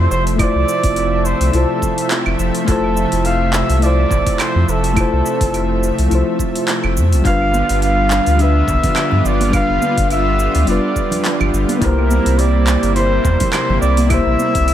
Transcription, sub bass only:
0.11 0.48 F1 medium
0.55 0.64 C2 medium
0.84 1.34 F1 medium
1.40 1.50 C2 medium
1.53 1.65 C2 medium
2.26 2.36 F1 medium
2.39 2.51 F1 loud
2.68 3.05 F1 medium
3.12 3.63 F1 medium
3.69 4.05 C2 medium
4.11 4.22 A1 medium
4.55 4.65 F2 loud
4.68 5.05 F1 medium
5.13 5.22 C2 medium
5.41 5.91 F1 medium
5.99 6.08 C2 medium
6.11 6.23 C2 loud
6.84 6.98 F1 loud
6.97 7.14 F2 loud
7.12 7.22 C2 loud
7.25 7.63 G1 medium
7.70 8.20 G1 medium
8.27 8.62 D2 medium
8.68 8.79 B1 medium
9.12 9.22 G2 loud
9.25 9.63 G1 medium
9.69 9.79 F1 medium
9.97 10.48 G1 medium
10.55 10.64 D2 medium
10.67 10.79 F1 medium
11.40 11.50 G1 medium
11.53 11.65 G1 loud
11.82 12.20 C2 loud
12.26 12.77 C2 medium
12.83 13.19 G1 medium
13.25 13.36 E2 medium
13.69 13.79 G1 loud
13.82 14.20 C2 medium
14.26 14.36 A#1 loud
14.55 14.74 C2 medium

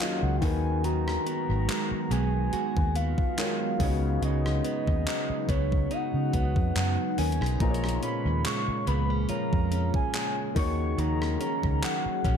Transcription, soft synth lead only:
0.01 0.25 F5 medium
0.24 0.39 F#5 loud
0.37 0.45 G5 medium
0.43 0.84 G#5 loud
0.85 2.13 A#5 loud
2.12 2.97 G#5 loud
2.96 4.22 F5 loud
4.23 5.51 D#5 loud
5.50 5.93 C#5 medium
5.92 6.76 F#5 loud
6.77 7.20 F#5 loud
7.19 7.60 G#5 loud
7.61 8.00 A#5 loud
8.04 8.42 B5 loud
8.46 8.85 C#6 loud
8.88 9.27 B5 loud
9.30 9.91 A#5 loud
9.95 10.53 G#5 loud
10.57 11.01 C#6 loud
10.99 11.41 A#5 loud
11.42 11.85 A#5 loud
11.84 12.37 F#5 loud

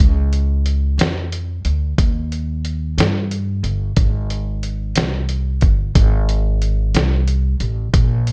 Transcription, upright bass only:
0.00 0.95 C#2 medium
0.98 1.61 F2 medium
1.65 1.96 D2 medium
1.98 2.94 D#2 medium
2.98 3.60 G2 medium
3.63 3.94 G1 medium
3.97 4.92 G#1 medium
4.97 5.59 C2 medium
5.62 5.93 G1 medium
5.96 6.91 G#1 medium
6.95 7.57 C2 medium
7.60 7.91 A1 medium
7.93 8.32 A#1 medium

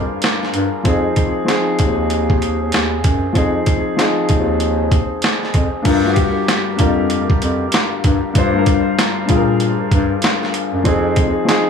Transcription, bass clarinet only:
0.00 0.19 F2 loud
0.54 0.69 G2 loud
0.85 1.09 F2 loud
1.80 2.69 D#2 loud
2.73 3.06 D#2 medium
3.05 3.28 F#2 medium
3.35 3.59 F2 loud
4.30 5.19 D#2 loud
5.54 5.69 F2 medium
5.85 6.33 G2 loud
6.80 7.27 F2 loud
7.42 7.66 F2 loud
8.04 8.19 G2 medium
8.35 8.83 G2 loud
9.30 9.77 A#2 medium
9.92 10.16 G2 loud
10.73 10.83 F#2 loud
10.85 11.33 F2 loud

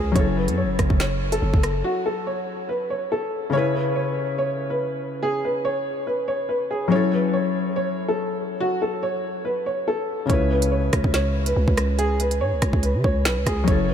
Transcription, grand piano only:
0.00 0.14 G#4 medium
0.16 0.35 C#5 loud
0.37 0.56 B4 medium
0.57 0.97 C#5 medium
1.00 1.31 C#5 medium
1.32 1.81 A4 medium
1.84 2.04 F#4 loud
2.06 2.25 A4 medium
2.27 2.67 C#5 medium
2.69 2.88 B4 medium
2.90 3.10 C#5 medium
3.12 3.51 A4 medium
3.53 3.73 C#5 loud
3.75 3.94 B4 medium
3.96 4.35 C#5 medium
4.38 4.69 C#5 medium
4.70 5.19 B4 medium
5.23 5.42 G#4 loud
5.45 5.64 B4 medium
5.65 6.05 C#5 medium
6.07 6.27 B4 medium
6.28 6.48 C#5 medium
6.49 6.69 B4 medium
6.71 6.90 G#4 medium
6.92 7.11 C#5 loud
7.13 7.32 B4 medium
7.33 7.73 C#5 medium
7.76 8.07 C#5 medium
8.08 8.57 A4 medium
8.60 8.80 F#4 loud
8.82 9.01 A4 medium
9.03 9.43 C#5 medium
9.45 9.64 B4 medium
9.66 9.86 C#5 medium
9.88 10.27 A4 medium
10.29 10.49 C#5 loud
10.51 10.70 B4 medium
10.72 11.11 C#5 medium
11.14 11.45 C#5 medium
11.46 11.95 B4 medium
11.99 12.18 G#4 loud
12.21 12.40 B4 medium
12.41 12.81 C#5 medium
12.83 13.03 B4 medium
13.04 13.24 C#5 medium
13.25 13.45 B4 medium
13.47 13.66 G#4 medium
13.68 13.87 C#5 loud
13.89 13.94 B4 medium

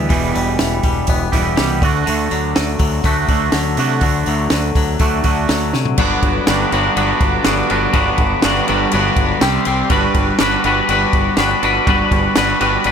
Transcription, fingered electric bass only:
0.10 0.33 E1 medium
0.36 0.58 E1 medium
0.61 0.82 E1 medium
0.84 1.06 E1 medium
1.08 1.31 E1 medium
1.33 1.55 E1 medium
1.59 1.80 C2 medium
1.82 2.04 D2 medium
2.08 2.29 D2 medium
2.32 2.54 D2 medium
2.58 2.79 D2 medium
2.80 3.02 D2 medium
3.04 3.27 D2 medium
3.29 3.51 D2 medium
3.53 3.75 D2 medium
3.78 4.00 C3 medium
4.02 4.24 D2 medium
4.27 4.49 D2 loud
4.51 4.73 D2 medium
4.75 4.98 D2 medium
5.00 5.22 D2 medium
5.25 5.47 D2 medium
5.50 5.72 D2 medium
5.74 5.96 C3 medium
5.99 6.14 G1 medium
6.22 6.38 G1 medium
6.48 6.63 G1 medium
6.72 6.88 G1 medium
6.97 7.12 G1 medium
7.21 7.36 G1 medium
7.46 7.61 G1 medium
7.71 7.86 G1 medium
7.94 8.10 G1 medium
8.19 8.34 G1 medium
8.45 8.60 G1 medium
8.70 8.84 G1 medium
8.94 9.09 G1 loud
9.17 9.32 G1 medium
9.42 9.57 C2 medium
9.67 9.82 C2 medium
9.90 10.06 G1 medium
10.15 10.30 G1 loud
10.40 10.55 G1 medium
10.64 10.80 G1 medium
10.89 11.04 G1 loud
11.13 11.28 G1 medium
11.38 11.53 G1 loud
11.63 11.78 G1 medium
11.87 12.02 G1 medium
12.11 12.27 G1 medium
12.37 12.52 G1 medium
12.61 12.76 G1 medium
12.85 12.92 G1 medium

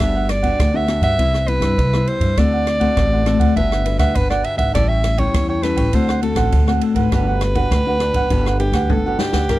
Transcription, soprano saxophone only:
0.00 0.31 E5 medium
0.30 0.78 D5 medium
0.76 1.03 E5 medium
1.04 1.49 E5 loud
1.48 2.09 B4 medium
2.08 2.40 C5 medium
2.38 3.56 D5 loud
3.56 3.98 E5 medium
4.00 4.17 E5 medium
4.16 4.29 B4 medium
4.30 4.46 D5 medium
4.45 4.57 E5 medium
4.58 4.73 E5 medium
4.74 4.90 D5 medium
4.88 5.21 E5 medium
5.19 5.49 C#5 medium
5.49 5.64 C#5 medium
5.63 5.96 B4 medium
5.95 6.22 C5 medium
6.23 6.67 A4 medium
6.95 8.55 B4 medium
8.59 8.92 G4 medium
8.91 9.19 A4 medium
9.19 9.59 G4 medium

